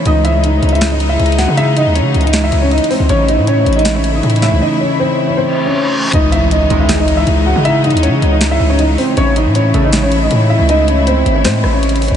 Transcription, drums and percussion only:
0.06 closed hi-hat
0.25 closed hi-hat
0.44 closed hi-hat
0.63 closed hi-hat
0.69 closed hi-hat
0.75 closed hi-hat
0.81 snare, closed hi-hat
1.00 closed hi-hat
1.20 closed hi-hat
1.26 closed hi-hat
1.32 closed hi-hat
1.39 snare, closed hi-hat
1.57 closed hi-hat
1.77 closed hi-hat
1.95 closed hi-hat
2.14 closed hi-hat
2.21 closed hi-hat
2.27 closed hi-hat
2.33 snare, closed hi-hat
2.52 closed hi-hat
2.71 closed hi-hat
2.78 closed hi-hat
2.84 closed hi-hat
2.91 open hi-hat
3.09 closed hi-hat
3.29 closed hi-hat
3.47 closed hi-hat
3.66 closed hi-hat
3.73 closed hi-hat
3.79 closed hi-hat
3.85 snare, closed hi-hat
4.04 closed hi-hat
4.23 closed hi-hat
4.30 closed hi-hat
4.36 closed hi-hat
4.42 snare, closed hi-hat
6.13 closed hi-hat
6.32 closed hi-hat
6.51 closed hi-hat
6.70 closed hi-hat
6.89 snare, closed hi-hat
7.08 closed hi-hat
7.27 closed hi-hat
7.65 closed hi-hat
7.84 closed hi-hat
7.90 closed hi-hat
7.97 closed hi-hat
8.03 closed hi-hat
8.22 closed hi-hat
8.41 snare, closed hi-hat
8.79 closed hi-hat
8.98 open hi-hat
9.17 closed hi-hat
9.36 closed hi-hat
9.55 closed hi-hat
9.74 closed hi-hat
9.93 snare, closed hi-hat
10.12 closed hi-hat
10.31 closed hi-hat
10.69 closed hi-hat
10.88 closed hi-hat
11.07 closed hi-hat
11.26 closed hi-hat
11.44 snare, closed hi-hat
11.64 cross-stick
11.83 closed hi-hat
11.89 closed hi-hat
11.96 closed hi-hat
12.02 closed hi-hat, open hi-hat
12.08 closed hi-hat

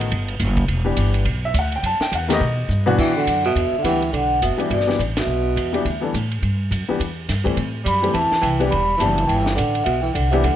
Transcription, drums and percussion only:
0.01 ride
0.12 kick, ride
0.28 ride
0.39 kick, hi-hat pedal, ride
0.57 kick, ride
0.68 kick, ride
0.97 kick, hi-hat pedal, ride
1.14 ride
1.25 kick, ride
1.54 kick, hi-hat pedal, ride
1.72 ride
1.83 kick, ride
2.01 snare
2.12 kick, hi-hat pedal, ride
2.30 snare, ride
2.41 kick
2.70 hi-hat pedal
2.88 floor tom
2.98 kick, crash
3.27 kick, hi-hat pedal, ride
3.44 ride
3.56 kick, ride
3.84 kick, hi-hat pedal, ride
4.02 ride
4.13 kick, ride
4.42 kick, hi-hat pedal, ride
4.60 ride
4.70 kick, ride
4.80 snare
4.90 snare
4.99 kick, hi-hat pedal, ride
5.17 snare, ride
5.57 kick, hi-hat pedal, ride
5.74 ride
5.85 kick, ride
6.14 kick, hi-hat pedal, ride
6.31 ride
6.43 kick, ride
6.71 kick, hi-hat pedal, ride
7.00 kick, ride
7.29 kick, snare, hi-hat pedal, ride
7.46 kick, ride
7.57 kick, ride
7.86 kick, hi-hat pedal, ride
8.04 ride
8.14 kick, ride
8.32 snare
8.43 kick, hi-hat pedal, ride
8.60 ride
8.72 kick, ride
9.00 kick, hi-hat pedal, ride
9.18 ride
9.29 kick, ride
9.46 snare
9.58 kick, hi-hat pedal, ride
9.75 ride
9.86 kick, ride
10.15 kick, hi-hat pedal, ride
10.33 ride
10.44 kick, ride

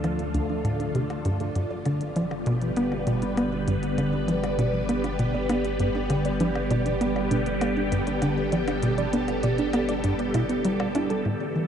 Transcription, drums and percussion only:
0.04 closed hi-hat, percussion blips
0.19 closed hi-hat
0.34 closed hi-hat
0.65 closed hi-hat, percussion blips
0.80 closed hi-hat
0.95 closed hi-hat
1.10 closed hi-hat, percussion blips
1.25 closed hi-hat
1.40 closed hi-hat
1.56 closed hi-hat
1.86 closed hi-hat, percussion blips
2.01 closed hi-hat
2.16 closed hi-hat
2.31 percussion blips
2.46 closed hi-hat
2.62 closed hi-hat
2.77 closed hi-hat
2.92 percussion blips
3.07 closed hi-hat
3.22 closed hi-hat
3.37 closed hi-hat, percussion blips
3.68 closed hi-hat
3.83 closed hi-hat
3.98 closed hi-hat, percussion blips
4.28 closed hi-hat
4.44 closed hi-hat, percussion blips
4.59 closed hi-hat
4.89 closed hi-hat
5.04 closed hi-hat, percussion blips
5.19 closed hi-hat
5.50 closed hi-hat, percussion blips
5.65 closed hi-hat
5.80 closed hi-hat
6.10 closed hi-hat, percussion blips
6.25 closed hi-hat
6.40 closed hi-hat
6.55 percussion blips
6.71 closed hi-hat
6.86 closed hi-hat
7.01 closed hi-hat
7.16 percussion blips
7.31 closed hi-hat
7.46 closed hi-hat
7.61 closed hi-hat, percussion blips
7.92 closed hi-hat
8.07 closed hi-hat
8.22 closed hi-hat, percussion blips
8.52 closed hi-hat
8.68 closed hi-hat, percussion blips
8.83 closed hi-hat
8.98 closed hi-hat
9.13 closed hi-hat
9.28 closed hi-hat, percussion blips
9.43 closed hi-hat
9.58 closed hi-hat
9.73 closed hi-hat, percussion blips
9.89 closed hi-hat
10.04 closed hi-hat
10.19 closed hi-hat
10.34 closed hi-hat, percussion blips
10.49 closed hi-hat
10.65 closed hi-hat
10.80 percussion blips
10.95 closed hi-hat
11.10 closed hi-hat

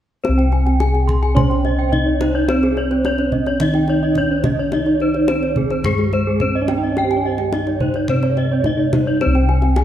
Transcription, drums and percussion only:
0.25 kendang high
0.39 kendang slap
0.52 kendang slap
0.67 kendang slap
0.80 kendang high
0.95 kendang slap
1.09 kendang low
1.23 kendang slap
1.37 kendang low
1.51 kendang slap
1.65 kendang slap
1.93 kendang low
2.21 kendang slap, kendang high
2.48 kendang high
2.63 kendang slap
2.77 kendang slap
2.91 kendang slap
3.05 kendang high
3.18 kendang slap
3.32 kendang low
3.46 kendang slap
3.60 kendang low
3.74 kendang slap
3.88 kendang slap
4.15 kendang low
4.44 kendang slap, kendang high, kendang low
4.72 kendang high
4.86 kendang slap
5.00 kendang slap
5.14 kendang slap
5.28 kendang high
5.43 kendang slap
5.56 kendang low
5.70 kendang slap
5.84 kendang low
5.98 kendang slap
6.13 kendang slap
6.40 kendang low
6.68 kendang slap, kendang high
6.97 kendang high
7.11 kendang slap
7.38 kendang slap
7.52 kendang slap, kendang high
7.67 kendang slap
7.80 kendang low
7.94 kendang slap
8.08 kendang low
8.23 kendang slap
8.37 kendang slap
8.64 kendang slap, kendang low
8.93 kendang slap, kendang high, kendang low
9.21 kendang high
9.35 kendang slap
9.49 kendang slap
9.62 kendang slap
9.76 kendang high

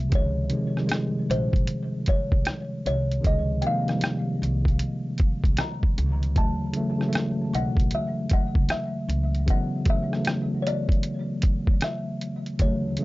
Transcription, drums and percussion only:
0.12 kick, closed hi-hat
0.50 closed hi-hat
0.77 cross-stick
0.89 cross-stick, closed hi-hat
1.31 closed hi-hat
1.53 kick, closed hi-hat
1.67 closed hi-hat
2.06 kick, closed hi-hat
2.32 kick
2.45 cross-stick, closed hi-hat
2.86 closed hi-hat
3.12 closed hi-hat
3.24 kick, closed hi-hat
3.62 closed hi-hat
3.88 cross-stick, closed hi-hat
4.01 cross-stick, closed hi-hat
4.43 closed hi-hat
4.65 kick, closed hi-hat
4.79 closed hi-hat
5.18 kick, closed hi-hat
5.44 kick, closed hi-hat
5.57 cross-stick, closed hi-hat
5.83 kick
5.98 closed hi-hat
6.23 closed hi-hat
6.36 kick, closed hi-hat
6.74 closed hi-hat
7.01 cross-stick
7.13 cross-stick, closed hi-hat
7.55 closed hi-hat
7.77 kick, closed hi-hat
7.91 closed hi-hat
8.30 kick, closed hi-hat
8.55 kick
8.69 cross-stick, closed hi-hat
9.10 closed hi-hat
9.35 closed hi-hat
9.48 kick, closed hi-hat
9.85 kick, closed hi-hat
10.13 cross-stick
10.25 cross-stick, closed hi-hat
10.67 closed hi-hat
10.89 kick, closed hi-hat
11.03 closed hi-hat
11.42 kick, closed hi-hat
11.67 kick
11.81 cross-stick, closed hi-hat
12.21 closed hi-hat
12.46 closed hi-hat
12.59 kick, closed hi-hat
12.97 closed hi-hat

